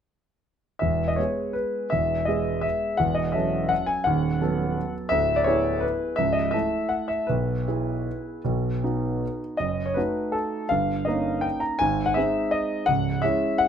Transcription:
grand piano
0.79 E1 E2 E5
1.08 D#5
1.16 G#3 B3 G#4 C#5
1.53 B4
1.90 E1 E2 E5
2.25 G#3 B3 G#4 D#5
2.61 E5
2.97 E1 E2 F#5
3.15 D#5
3.32 F#3 C#4 A4 E5
3.69 F#5
3.86 G#5
4.04 D#1 D#2 F#5
4.41 F#3 B3 A4
5.09 D1 D2 E5
5.36 D5
5.44 B3 E4 G#4 C#5
5.80 B4
6.16 C#1 C#2 E5
6.33 D#5
6.51 A3 E4 A4 E5
6.89 F#5
7.08 E5
7.27 B1 B2 B4
7.67 B3 E4 G#4
8.44 B1 B2
8.83 B3 D#4 F#4
9.57 F#1 F#2 D#5
9.86 C#5
9.94 A3 D#4 F#4 B4
10.32 A4
10.69 G1 G2 F5
11.05 A#3 C#4 D#4 D#5
11.41 G5
11.60 A#5
11.79 G#1 G#2 G#5
12.06 F#5
12.14 G#3 C4 D#4 E5
12.51 D#5
12.86 C#1 C#2 F#5
13.22 G#3 C#4 E4 E5
13.58 F#5

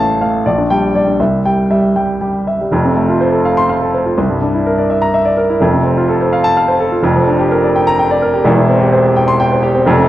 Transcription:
grand piano
Already playing: A1 A3 F5 A5
0.21 A3 F5
0.46 A#1 D5
0.58 D4
0.70 G3 G5
0.95 G3 D5
1.07 D4
1.20 C2 E5
1.45 G3 G5
1.71 G3 E5
1.96 G3 G5
2.21 G3 G4
2.47 E5
2.61 G3
2.72 F1 F2
2.85 C3
2.97 A3
3.09 F4
3.21 C5
3.32 A4
3.45 F5
3.57 C6
3.69 F5
3.81 A4
3.94 C5
4.06 F4
4.18 C2
4.30 G2
4.42 D4
4.54 E4
4.66 A#4
4.78 D5
4.90 E5
5.02 A#5
5.14 E5
5.25 D5
5.37 A#4
5.49 E4
5.60 F1 F2
5.73 C3
5.85 C4
5.97 F4
6.09 A4
6.21 C5
6.33 F5
6.44 A5
6.57 F5
6.68 C5
6.80 A4
6.92 F4
7.03 F1 F2
7.16 F3
7.28 D4
7.39 G4
7.51 A#4
7.63 D5
7.76 G5
7.87 A#5
7.99 G5
8.11 D5
8.22 A#4
8.34 G4
8.44 E1 E2
8.58 E3
8.69 C4
8.81 G4
8.92 C5
9.05 G4
9.16 G5
9.28 C6
9.40 G5
9.52 C5
9.63 G4
9.75 C4
9.86 F1 F2
9.99 C3

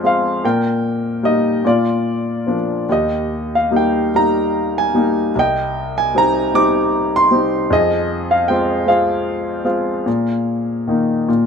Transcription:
grand piano
Already playing: F2 G#3 C4 F4 G#4 F5 G5 G#5 C6
0.04 G#3 C4 F4 F5
0.44 A#2 A#4 G5
1.23 G3 A#3 D#4 D#5
1.65 A#2 F4 D5
2.47 F3 A#3 D4
2.89 D#2 G4 D#5
3.55 F5
3.71 G3 A#3 D#4
3.76 G5
4.15 G3 A#3 D#4 A#5
4.78 G#5
4.94 G3 A#3 D#4
5.35 C2 D#5 G5
5.98 G#5
6.15 G3 C4 D#4 A#5
6.54 G3 C4 D#4 D6
7.16 C6
7.31 G3 C4 D#4
7.70 F2 G#4 D#5
8.31 F5
8.48 G#3 C4 F4 G5
8.87 G#3 C4 F4 G#4 F5
9.64 G#3 C4 F4
10.06 A#2
10.88 D#3 A#3 D#4
11.28 A#2

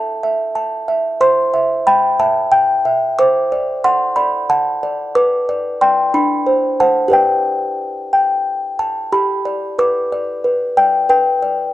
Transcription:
music box
Already playing: A4 E5 A5
0.23 E5
0.55 A5
0.88 E5
1.21 C5 C6
1.54 E5
1.87 G5 B5
2.20 E5 A5
2.52 G5
2.85 E5
3.19 C5 D6
3.52 D5
3.84 F#5 C6
4.16 D5 B5
4.50 F#5 A5
4.83 D5
5.15 B4 D6
5.49 D5
5.81 D5 G5 C6
6.14 D4 B5
6.46 C5
6.80 C5 F#5 A5
7.08 G4 B4 D5
7.13 G5
8.13 G5
8.79 A5
9.12 G4 B5
9.45 D5
9.79 B4 D6
10.12 D5
10.44 B4
10.77 D5 G5
11.09 B4 G5
11.42 D5

